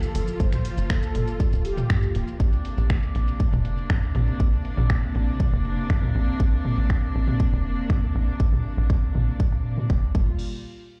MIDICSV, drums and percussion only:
0, 0, Header, 1, 2, 480
1, 0, Start_track
1, 0, Tempo, 500000
1, 383, Time_signature, 4, 2, 24, 8
1, 10560, End_track
2, 0, Start_track
2, 0, Title_t, "Drums"
2, 24, Note_on_c, 9, 82, 55
2, 120, Note_off_c, 9, 82, 0
2, 143, Note_on_c, 9, 46, 113
2, 239, Note_off_c, 9, 46, 0
2, 264, Note_on_c, 9, 82, 55
2, 360, Note_off_c, 9, 82, 0
2, 384, Note_on_c, 9, 36, 127
2, 384, Note_on_c, 9, 82, 54
2, 480, Note_off_c, 9, 36, 0
2, 480, Note_off_c, 9, 82, 0
2, 504, Note_on_c, 9, 26, 36
2, 504, Note_on_c, 9, 45, 95
2, 504, Note_on_c, 9, 82, 49
2, 600, Note_off_c, 9, 26, 0
2, 600, Note_off_c, 9, 45, 0
2, 600, Note_off_c, 9, 82, 0
2, 623, Note_on_c, 9, 46, 107
2, 719, Note_off_c, 9, 46, 0
2, 744, Note_on_c, 9, 82, 54
2, 840, Note_off_c, 9, 82, 0
2, 864, Note_on_c, 9, 26, 115
2, 864, Note_on_c, 9, 36, 127
2, 864, Note_on_c, 9, 82, 53
2, 960, Note_off_c, 9, 26, 0
2, 960, Note_off_c, 9, 36, 0
2, 960, Note_off_c, 9, 82, 0
2, 984, Note_on_c, 9, 82, 55
2, 1080, Note_off_c, 9, 82, 0
2, 1103, Note_on_c, 9, 45, 89
2, 1103, Note_on_c, 9, 46, 105
2, 1199, Note_off_c, 9, 45, 0
2, 1199, Note_off_c, 9, 46, 0
2, 1224, Note_on_c, 9, 82, 51
2, 1320, Note_off_c, 9, 82, 0
2, 1344, Note_on_c, 9, 36, 123
2, 1344, Note_on_c, 9, 82, 55
2, 1440, Note_off_c, 9, 36, 0
2, 1440, Note_off_c, 9, 82, 0
2, 1464, Note_on_c, 9, 82, 53
2, 1560, Note_off_c, 9, 82, 0
2, 1583, Note_on_c, 9, 46, 107
2, 1679, Note_off_c, 9, 46, 0
2, 1704, Note_on_c, 9, 45, 90
2, 1704, Note_on_c, 9, 82, 51
2, 1800, Note_off_c, 9, 45, 0
2, 1800, Note_off_c, 9, 82, 0
2, 1824, Note_on_c, 9, 26, 113
2, 1824, Note_on_c, 9, 36, 127
2, 1824, Note_on_c, 9, 82, 53
2, 1920, Note_off_c, 9, 26, 0
2, 1920, Note_off_c, 9, 36, 0
2, 1920, Note_off_c, 9, 82, 0
2, 1944, Note_on_c, 9, 82, 52
2, 2040, Note_off_c, 9, 82, 0
2, 2063, Note_on_c, 9, 46, 113
2, 2159, Note_off_c, 9, 46, 0
2, 2184, Note_on_c, 9, 82, 52
2, 2280, Note_off_c, 9, 82, 0
2, 2304, Note_on_c, 9, 36, 127
2, 2304, Note_on_c, 9, 82, 53
2, 2400, Note_off_c, 9, 36, 0
2, 2400, Note_off_c, 9, 82, 0
2, 2424, Note_on_c, 9, 82, 52
2, 2520, Note_off_c, 9, 82, 0
2, 2544, Note_on_c, 9, 46, 97
2, 2640, Note_off_c, 9, 46, 0
2, 2664, Note_on_c, 9, 82, 56
2, 2760, Note_off_c, 9, 82, 0
2, 2784, Note_on_c, 9, 26, 113
2, 2784, Note_on_c, 9, 36, 120
2, 2784, Note_on_c, 9, 45, 93
2, 2784, Note_on_c, 9, 82, 54
2, 2880, Note_off_c, 9, 26, 0
2, 2880, Note_off_c, 9, 36, 0
2, 2880, Note_off_c, 9, 45, 0
2, 2880, Note_off_c, 9, 82, 0
2, 2904, Note_on_c, 9, 82, 57
2, 3000, Note_off_c, 9, 82, 0
2, 3024, Note_on_c, 9, 46, 104
2, 3120, Note_off_c, 9, 46, 0
2, 3144, Note_on_c, 9, 82, 53
2, 3240, Note_off_c, 9, 82, 0
2, 3263, Note_on_c, 9, 82, 55
2, 3264, Note_on_c, 9, 36, 121
2, 3359, Note_off_c, 9, 82, 0
2, 3360, Note_off_c, 9, 36, 0
2, 3384, Note_on_c, 9, 45, 98
2, 3384, Note_on_c, 9, 82, 55
2, 3480, Note_off_c, 9, 45, 0
2, 3480, Note_off_c, 9, 82, 0
2, 3503, Note_on_c, 9, 46, 100
2, 3599, Note_off_c, 9, 46, 0
2, 3623, Note_on_c, 9, 82, 53
2, 3719, Note_off_c, 9, 82, 0
2, 3743, Note_on_c, 9, 26, 108
2, 3743, Note_on_c, 9, 82, 52
2, 3744, Note_on_c, 9, 36, 122
2, 3839, Note_off_c, 9, 26, 0
2, 3839, Note_off_c, 9, 82, 0
2, 3840, Note_off_c, 9, 36, 0
2, 3864, Note_on_c, 9, 82, 53
2, 3960, Note_off_c, 9, 82, 0
2, 3982, Note_on_c, 9, 45, 99
2, 3982, Note_on_c, 9, 46, 108
2, 4078, Note_off_c, 9, 45, 0
2, 4078, Note_off_c, 9, 46, 0
2, 4103, Note_on_c, 9, 82, 51
2, 4199, Note_off_c, 9, 82, 0
2, 4223, Note_on_c, 9, 82, 55
2, 4224, Note_on_c, 9, 36, 120
2, 4319, Note_off_c, 9, 82, 0
2, 4320, Note_off_c, 9, 36, 0
2, 4343, Note_on_c, 9, 82, 54
2, 4439, Note_off_c, 9, 82, 0
2, 4463, Note_on_c, 9, 46, 105
2, 4559, Note_off_c, 9, 46, 0
2, 4583, Note_on_c, 9, 45, 106
2, 4583, Note_on_c, 9, 82, 57
2, 4679, Note_off_c, 9, 45, 0
2, 4679, Note_off_c, 9, 82, 0
2, 4703, Note_on_c, 9, 26, 110
2, 4703, Note_on_c, 9, 82, 55
2, 4704, Note_on_c, 9, 36, 120
2, 4799, Note_off_c, 9, 26, 0
2, 4799, Note_off_c, 9, 82, 0
2, 4800, Note_off_c, 9, 36, 0
2, 4823, Note_on_c, 9, 82, 60
2, 4919, Note_off_c, 9, 82, 0
2, 4943, Note_on_c, 9, 46, 99
2, 5039, Note_off_c, 9, 46, 0
2, 5063, Note_on_c, 9, 82, 56
2, 5159, Note_off_c, 9, 82, 0
2, 5182, Note_on_c, 9, 45, 104
2, 5182, Note_on_c, 9, 82, 57
2, 5184, Note_on_c, 9, 36, 119
2, 5278, Note_off_c, 9, 45, 0
2, 5278, Note_off_c, 9, 82, 0
2, 5280, Note_off_c, 9, 36, 0
2, 5303, Note_on_c, 9, 82, 55
2, 5399, Note_off_c, 9, 82, 0
2, 5423, Note_on_c, 9, 46, 99
2, 5519, Note_off_c, 9, 46, 0
2, 5543, Note_on_c, 9, 82, 56
2, 5639, Note_off_c, 9, 82, 0
2, 5663, Note_on_c, 9, 26, 108
2, 5663, Note_on_c, 9, 82, 53
2, 5664, Note_on_c, 9, 36, 115
2, 5759, Note_off_c, 9, 26, 0
2, 5759, Note_off_c, 9, 82, 0
2, 5760, Note_off_c, 9, 36, 0
2, 5784, Note_on_c, 9, 45, 101
2, 5784, Note_on_c, 9, 82, 52
2, 5880, Note_off_c, 9, 45, 0
2, 5880, Note_off_c, 9, 82, 0
2, 5903, Note_on_c, 9, 46, 102
2, 5999, Note_off_c, 9, 46, 0
2, 6024, Note_on_c, 9, 82, 54
2, 6120, Note_off_c, 9, 82, 0
2, 6143, Note_on_c, 9, 36, 120
2, 6143, Note_on_c, 9, 82, 61
2, 6239, Note_off_c, 9, 36, 0
2, 6239, Note_off_c, 9, 82, 0
2, 6263, Note_on_c, 9, 82, 53
2, 6359, Note_off_c, 9, 82, 0
2, 6383, Note_on_c, 9, 45, 92
2, 6383, Note_on_c, 9, 46, 97
2, 6479, Note_off_c, 9, 45, 0
2, 6479, Note_off_c, 9, 46, 0
2, 6504, Note_on_c, 9, 82, 60
2, 6600, Note_off_c, 9, 82, 0
2, 6623, Note_on_c, 9, 36, 114
2, 6624, Note_on_c, 9, 26, 114
2, 6719, Note_off_c, 9, 36, 0
2, 6720, Note_off_c, 9, 26, 0
2, 6744, Note_on_c, 9, 82, 64
2, 6840, Note_off_c, 9, 82, 0
2, 6863, Note_on_c, 9, 46, 100
2, 6959, Note_off_c, 9, 46, 0
2, 6984, Note_on_c, 9, 45, 92
2, 6984, Note_on_c, 9, 82, 58
2, 7080, Note_off_c, 9, 45, 0
2, 7080, Note_off_c, 9, 82, 0
2, 7103, Note_on_c, 9, 36, 115
2, 7103, Note_on_c, 9, 82, 63
2, 7199, Note_off_c, 9, 36, 0
2, 7199, Note_off_c, 9, 82, 0
2, 7223, Note_on_c, 9, 82, 58
2, 7319, Note_off_c, 9, 82, 0
2, 7342, Note_on_c, 9, 46, 103
2, 7438, Note_off_c, 9, 46, 0
2, 7463, Note_on_c, 9, 82, 53
2, 7559, Note_off_c, 9, 82, 0
2, 7582, Note_on_c, 9, 26, 114
2, 7582, Note_on_c, 9, 45, 87
2, 7583, Note_on_c, 9, 36, 121
2, 7678, Note_off_c, 9, 26, 0
2, 7678, Note_off_c, 9, 45, 0
2, 7679, Note_off_c, 9, 36, 0
2, 7703, Note_on_c, 9, 82, 60
2, 7799, Note_off_c, 9, 82, 0
2, 7822, Note_on_c, 9, 46, 107
2, 7918, Note_off_c, 9, 46, 0
2, 7943, Note_on_c, 9, 82, 56
2, 8039, Note_off_c, 9, 82, 0
2, 8063, Note_on_c, 9, 36, 125
2, 8159, Note_off_c, 9, 36, 0
2, 8183, Note_on_c, 9, 26, 36
2, 8183, Note_on_c, 9, 45, 85
2, 8183, Note_on_c, 9, 82, 58
2, 8279, Note_off_c, 9, 26, 0
2, 8279, Note_off_c, 9, 45, 0
2, 8279, Note_off_c, 9, 82, 0
2, 8302, Note_on_c, 9, 46, 103
2, 8398, Note_off_c, 9, 46, 0
2, 8423, Note_on_c, 9, 82, 64
2, 8519, Note_off_c, 9, 82, 0
2, 8542, Note_on_c, 9, 26, 118
2, 8543, Note_on_c, 9, 36, 116
2, 8638, Note_off_c, 9, 26, 0
2, 8639, Note_off_c, 9, 36, 0
2, 8663, Note_on_c, 9, 82, 65
2, 8759, Note_off_c, 9, 82, 0
2, 8783, Note_on_c, 9, 45, 86
2, 8783, Note_on_c, 9, 46, 99
2, 8879, Note_off_c, 9, 45, 0
2, 8879, Note_off_c, 9, 46, 0
2, 8903, Note_on_c, 9, 82, 56
2, 8999, Note_off_c, 9, 82, 0
2, 9023, Note_on_c, 9, 36, 116
2, 9119, Note_off_c, 9, 36, 0
2, 9143, Note_on_c, 9, 26, 39
2, 9143, Note_on_c, 9, 82, 58
2, 9239, Note_off_c, 9, 26, 0
2, 9239, Note_off_c, 9, 82, 0
2, 9262, Note_on_c, 9, 46, 94
2, 9358, Note_off_c, 9, 46, 0
2, 9384, Note_on_c, 9, 45, 86
2, 9384, Note_on_c, 9, 82, 57
2, 9480, Note_off_c, 9, 45, 0
2, 9480, Note_off_c, 9, 82, 0
2, 9503, Note_on_c, 9, 26, 115
2, 9503, Note_on_c, 9, 36, 114
2, 9599, Note_off_c, 9, 26, 0
2, 9599, Note_off_c, 9, 36, 0
2, 9623, Note_on_c, 9, 82, 58
2, 9719, Note_off_c, 9, 82, 0
2, 9742, Note_on_c, 9, 49, 85
2, 9743, Note_on_c, 9, 36, 113
2, 9838, Note_off_c, 9, 49, 0
2, 9839, Note_off_c, 9, 36, 0
2, 10560, End_track
0, 0, End_of_file